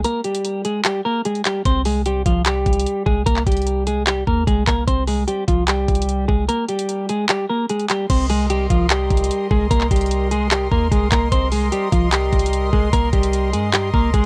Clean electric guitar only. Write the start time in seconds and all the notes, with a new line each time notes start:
0.04 A#3 A#4
0.24 G3 G4
0.65 G#3 G#4
0.85 G3 G4
1.05 A#3 A#4
1.25 G#3 G#4
1.46 G3 G4
1.66 C4 C5
1.85 G#3 G#4
2.06 G3 G4
2.26 F3 F4
2.46 G3 G4
3.06 G#3 G#4
3.26 A#3 A#4
3.47 G3 G4
3.87 G#3 G#4
4.07 G3 G4
4.27 A#3 A#4
4.47 G#3 G#4
4.67 A#3 A#4
4.87 C4 C5
5.08 G#3 G#4
5.28 G3 G4
5.48 F3 F4
5.68 G3 G4
6.28 G#3 G#4
6.49 A#3 A#4
6.69 G3 G4
7.09 G#3 G#4
7.29 G3 G4
7.49 A#3 A#4
7.70 G#3 G#4
7.90 G3 G4
8.10 C4 C5
8.30 G#3 G#4
8.50 G3 G4
8.70 F3 F4
8.90 G3 G4
9.51 G#3 G#4
9.71 A#3 A#4
9.91 G3 G4
10.31 G#3 G#4
10.52 G3 G4
10.71 A#3 A#4
10.91 G#3 G#4
11.12 A#3 A#4
11.32 C4 C5
11.52 G#3 G#4
11.72 G3 G4
11.92 F3 F4
12.13 G3 G4
12.73 G#3 G#4
12.93 A#3 A#4
13.13 G3 G4
13.53 G#3 G#4
13.73 G3 G4
13.94 A#3 A#4
14.14 G#3 G#4